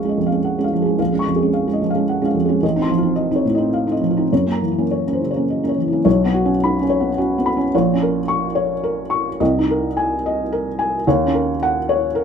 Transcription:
0.00 0.73 F3 soft
0.00 0.05 G#3 soft
0.00 0.05 C#4 soft
0.00 0.82 G#4 soft
0.00 0.27 F5 soft
0.00 1.02 C#6 soft
0.05 0.16 G#3 soft
0.05 0.16 C#4 soft
0.09 0.26 D#5 soft
0.18 0.39 F2 soft
0.27 0.56 F5 soft
0.32 0.56 G#3 soft
0.32 0.56 C#4 soft
0.45 0.63 F#5 soft
0.58 0.71 G#3 soft
0.58 0.71 C#4 soft
0.64 0.93 F5 soft
0.73 0.95 F3 soft
0.82 0.98 G#3 soft
0.82 1.11 G#4 soft
0.86 0.99 C#4 soft
0.99 1.12 A#1 soft
0.99 1.29 F5 soft
1.12 1.25 G#3 soft
1.12 1.25 C#4 soft
1.19 1.48 C#6 soft
1.27 1.49 F2 soft
1.36 1.65 G#4 soft
1.42 1.66 G#3 soft
1.42 1.66 C#4 soft
1.54 1.83 F5 soft
1.68 1.80 G#3 soft
1.68 1.80 C#4 soft
1.73 1.91 D#5 soft
1.82 2.03 F3 soft
1.90 2.20 F5 soft
1.95 2.20 G#3 soft
1.95 2.20 C#4 soft
2.09 2.27 F#5 soft
2.22 2.34 G#3 soft
2.22 2.34 C#4 soft
2.22 2.55 F5 soft
2.35 2.57 F2 soft
2.45 2.61 G#3 soft
2.45 2.62 C#4 soft
2.45 2.63 G#4 soft
2.63 2.76 A1 medium
2.63 2.92 D#5 soft
2.76 2.89 C4 soft
2.76 2.89 D#4 soft
2.82 3.11 C6 soft
2.90 3.12 F3 soft
2.98 3.28 F4 soft
3.03 3.28 C4 soft
3.03 3.28 D#4 soft
3.16 3.46 D#5 soft
3.31 3.44 C4 soft
3.31 3.44 D#4 soft
3.36 3.54 C#5 soft
3.45 3.68 A2 soft
3.55 3.85 C4 soft
3.55 3.84 D#4 soft
3.55 3.85 D#5 soft
3.74 3.93 F5 soft
3.87 4.01 C4 soft
3.87 4.00 D#4 soft
3.92 4.23 D#5 soft
4.01 4.25 F3 soft
4.11 4.31 F4 soft
4.17 4.30 C4 soft
4.17 4.30 D#4 soft
4.33 4.46 F#2 medium
4.33 4.63 C#5 soft
4.46 4.60 A#3 soft
4.46 4.59 C#4 soft
4.52 4.83 A#5 soft
4.62 4.85 E3 soft
4.72 5.02 E4 soft
4.78 5.03 A#3 soft
4.78 5.03 C#4 soft
4.91 5.22 C#5 soft
5.07 5.19 A#3 soft
5.07 5.19 C#4 soft
5.13 5.31 C5 soft
5.22 5.43 C#3 soft
5.31 5.60 C#5 soft
5.36 5.61 A#3 soft
5.36 5.61 C#4 soft
5.50 5.68 D#5 soft
5.63 5.76 A#3 soft
5.63 5.76 C#4 soft
5.69 5.99 C#5 soft
5.78 6.00 E3 soft
5.88 6.06 E4 soft
5.93 6.05 A#3 soft
5.93 6.05 C#4 soft
6.05 7.69 B1 medium
6.05 6.50 C#5 medium
6.25 6.55 B3 medium
6.34 6.79 F#4 medium
6.45 6.74 C#4 medium
6.64 6.81 D#4 soft
6.64 7.07 B5 medium
6.81 7.10 C#4 medium
6.90 7.34 C#5 medium
7.00 7.18 B3 soft
7.18 7.47 C#4 medium
7.18 7.62 F#4 medium
7.38 7.55 B3 soft
7.46 7.73 B5 medium
7.57 7.74 C#4 medium
7.75 9.37 A#1 medium
7.75 8.18 C#5 medium
7.93 8.22 C#4 medium
8.02 8.46 A#4 medium
8.28 8.73 C#6 medium
8.55 9.00 C#5 medium
8.84 9.29 A#4 medium
9.10 9.39 C#6 medium
9.40 11.01 C2 medium
9.40 9.85 D#5 medium
9.59 9.88 D#4 medium
9.70 10.14 A#4 medium
9.97 10.40 G#5 medium
10.26 10.68 D#5 medium
10.52 10.95 A#4 medium
10.79 11.05 G#5 medium
11.07 12.24 D#2 medium
11.07 11.50 C#5 medium
11.26 11.54 C#4 medium
11.34 11.77 A#4 medium
11.63 12.05 F#5 medium
11.89 12.24 C#5 medium
12.15 12.24 A#4 medium

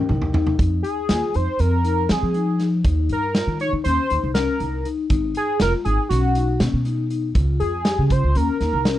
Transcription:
0.00 0.56 D#4 medium
0.00 0.57 G4 medium
0.00 0.58 A#4 medium
0.09 0.32 C2 medium
0.09 0.26 D#4 medium
0.09 mid tom medium
0.22 floor tom medium
0.33 0.51 D#4 medium
0.33 floor tom medium
0.47 floor tom medium
0.59 0.82 F2 medium
0.59 0.93 D#4 medium
0.59 kick medium
0.59 closed hi-hat medium
0.83 1.37 G#4 medium
0.83 closed hi-hat medium
1.09 1.21 D#2 medium
1.09 1.26 F4 medium
1.09 snare loud
1.09 closed hi-hat medium
1.34 1.46 F2 medium
1.34 1.51 D#4 medium
1.34 1.61 C5 medium
1.34 closed hi-hat medium
1.59 2.06 F2 medium
1.59 1.76 C4 medium
1.59 2.13 A#4 loud
1.59 closed hi-hat medium
1.84 2.01 D#4 medium
1.84 closed hi-hat medium
2.09 2.21 F3 medium
2.09 2.26 C4 medium
2.09 2.67 G#4 medium
2.09 snare medium
2.09 closed hi-hat medium
2.23 2.81 F3 medium
2.34 2.52 D#4 medium
2.34 closed hi-hat soft
2.59 2.76 D#4 medium
2.59 snare soft
2.59 closed hi-hat soft
2.84 3.08 D#2 medium
2.84 3.18 D#4 medium
2.84 kick medium
2.84 closed hi-hat medium
3.09 3.44 G2 medium
3.09 3.58 A#4 medium
3.09 closed hi-hat medium
3.35 3.52 F4 medium
3.35 snare medium
3.35 closed hi-hat medium
3.47 3.70 D#3 medium
3.60 3.77 D#4 medium
3.60 3.72 C#5 medium
3.60 closed hi-hat soft
3.73 3.84 D#3 medium
3.84 3.97 D#2 medium
3.84 4.02 C#4 medium
3.84 4.31 C5 loud
3.84 closed hi-hat medium
4.10 4.22 D#2 medium
4.10 closed hi-hat soft
4.24 4.46 C2 medium
4.34 4.52 C#4 medium
4.34 4.87 A#4 medium
4.34 snare medium
4.34 closed hi-hat medium
4.60 4.83 C2 medium
4.60 4.77 D#4 medium
4.60 closed hi-hat soft
4.85 5.03 D#4 medium
4.85 closed hi-hat soft
5.10 5.33 G#1 medium
5.10 5.44 D#4 medium
5.10 kick medium
5.10 closed hi-hat medium
5.35 5.60 G#4 medium
5.35 closed hi-hat medium
5.60 5.72 F1 medium
5.60 5.78 F4 medium
5.60 5.73 A#4 loud
5.60 snare medium
5.60 closed hi-hat medium
5.85 5.97 G#1 medium
5.85 6.03 D#4 medium
5.85 6.08 G#4 medium
5.85 closed hi-hat medium
6.09 6.57 B1 medium
6.09 6.28 C#4 medium
6.09 6.62 F#4 medium
6.09 snare soft
6.09 closed hi-hat medium
6.35 6.53 D#4 medium
6.35 closed hi-hat medium
6.60 6.72 B2 medium
6.60 6.78 C#4 medium
6.60 snare medium
6.60 closed hi-hat medium
6.73 7.32 B2 medium
6.85 7.03 D#4 medium
6.85 closed hi-hat soft
7.10 7.28 D#4 medium
7.10 closed hi-hat soft
7.35 7.58 C#2 medium
7.35 7.69 F4 medium
7.35 kick medium
7.35 closed hi-hat medium
7.60 7.95 F2 medium
7.60 8.13 G#4 medium
7.60 closed hi-hat soft
7.85 8.03 G4 medium
7.85 snare loud
7.85 closed hi-hat medium
7.99 8.21 C#3 medium
8.10 8.28 F4 medium
8.10 8.38 C5 medium
8.10 kick medium
8.10 closed hi-hat medium
8.24 8.35 C#2 medium
8.35 8.47 D#2 medium
8.35 8.53 C#4 medium
8.35 8.99 A#4 medium
8.35 closed hi-hat medium
8.61 8.72 D#2 medium
8.61 8.78 D#4 medium
8.61 snare soft
8.61 closed hi-hat medium
8.73 8.96 C2 medium
8.85 8.99 C#4 medium
8.85 snare medium
8.85 closed hi-hat medium

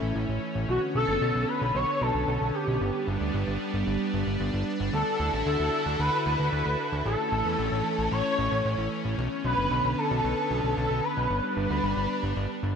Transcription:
0.00 0.13 A1 medium
0.00 0.67 E3 medium
0.00 0.66 A3 medium
0.00 2.77 C#4 medium
0.00 0.42 E4 medium
0.16 0.26 A1 loud
0.29 0.39 A1 medium
0.55 0.66 A1 medium
0.68 0.79 B1 loud
0.68 2.79 D3 medium
0.68 4.89 B3 medium
0.68 0.81 F#4 loud
0.95 1.05 B1 medium
0.95 1.50 A4 loud
1.08 1.19 F#1 medium
1.22 1.32 B1 loud
1.35 1.45 B1 medium
1.49 1.77 B4 loud
1.61 1.72 B1 medium
1.75 1.85 B1 loud
1.75 2.03 C#5 loud
2.01 2.12 B1 loud
2.01 2.56 A4 loud
2.15 2.25 B1 medium
2.28 2.38 B1 loud
2.41 2.52 B1 medium
2.55 3.08 G4 medium
2.68 2.78 B1 medium
2.81 2.91 G1 loud
2.81 4.91 G3 medium
2.81 7.02 D4 loud
3.07 3.18 G1 loud
3.21 3.31 D2 medium
3.34 3.44 G1 loud
3.47 3.58 G1 medium
3.74 3.84 G1 medium
3.87 3.97 G1 loud
4.14 4.24 G1 medium
4.27 4.37 G1 medium
4.40 4.51 G1 loud
4.53 4.64 G1 medium
4.80 4.90 G1 medium
4.93 5.04 D2 loud
4.93 7.04 D3 medium
4.93 7.04 E4 medium
4.93 7.04 F#4 medium
4.93 5.43 A4 loud
4.93 7.04 A4 loud
5.20 5.30 D2 medium
5.33 5.43 A1 medium
5.46 5.57 D2 loud
5.46 5.96 A4 medium
5.60 5.70 D2 medium
5.86 5.97 D2 medium
5.99 6.10 D2 loud
5.99 6.24 B4 loud
6.26 6.36 D2 loud
6.26 7.01 B4 loud
6.39 6.50 D2 medium
6.53 6.63 D2 loud
6.66 6.76 D2 medium
6.92 7.03 D2 medium
7.05 7.16 A1 loud
7.05 9.16 E3 medium
7.05 9.16 A3 medium
7.05 11.26 C#4 loud
7.05 8.08 A4 loud
7.32 7.43 A1 medium
7.45 7.56 E2 medium
7.59 7.69 A1 loud
7.72 7.82 A1 medium
7.99 8.09 A1 medium
8.12 8.22 A1 loud
8.12 8.88 C#5 loud
8.38 8.49 A1 medium
8.52 8.62 A1 medium
8.65 8.75 A1 loud
8.78 8.89 A1 medium
9.05 9.15 A1 medium
9.18 9.28 B1 loud
9.18 11.28 D3 medium
9.18 12.76 B3 medium
9.44 9.55 B1 medium
9.44 9.99 B4 loud
9.58 9.68 F#1 medium
9.71 9.82 B1 loud
9.84 9.95 B1 medium
9.98 10.77 A4 loud
10.11 10.21 B1 medium
10.24 10.35 B1 loud
10.51 10.61 B1 loud
10.64 10.74 B1 medium
10.77 10.88 B1 loud
10.77 11.05 A4 loud
10.90 11.01 B1 medium
11.04 12.76 B4 loud
11.17 11.27 B1 medium
11.30 11.41 G1 loud
11.30 12.76 G3 medium
11.30 12.76 D4 medium
11.57 11.67 G1 medium
11.70 11.81 D2 medium
11.84 11.94 G1 loud
11.97 12.07 G1 medium
12.23 12.34 G1 medium
12.37 12.47 G1 loud
12.63 12.73 G1 loud

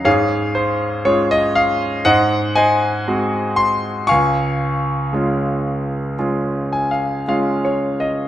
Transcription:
0.05 2.01 G#2 medium
0.05 2.01 G#4 medium
0.05 1.04 C#5 medium
0.05 0.56 F5 medium
0.55 1.01 C5 medium
1.05 2.03 G#3 soft
1.05 2.03 C#4 soft
1.05 2.03 F4 medium
1.05 1.31 C#5 medium
1.31 1.56 D#5 medium
1.55 2.07 F5 medium
2.05 4.06 G#2 medium
2.05 2.56 C5 medium
2.05 2.55 D#5 medium
2.05 2.58 F#5 medium
2.56 4.06 C5 medium
2.56 4.06 D#5 medium
2.56 3.61 G#5 medium
3.08 4.07 G#3 soft
3.08 4.07 C4 soft
3.08 4.07 F#4 soft
3.56 4.10 C6 medium
4.07 6.90 F5 medium
4.07 6.71 G#5 medium
4.07 7.21 C#6 medium
4.11 8.28 C#2 medium
5.13 6.14 G#3 soft
5.13 6.15 C#4 soft
5.13 6.15 F4 soft
6.19 7.24 G#3 soft
6.19 7.24 C#4 soft
6.19 7.24 F4 soft
6.73 6.89 G#5 medium
6.91 7.25 F5 medium
7.28 8.28 G#3 soft
7.28 8.28 C#4 soft
7.28 8.28 F4 soft
7.28 7.62 F5 medium
7.65 7.97 C#5 medium
8.00 8.28 D#5 medium

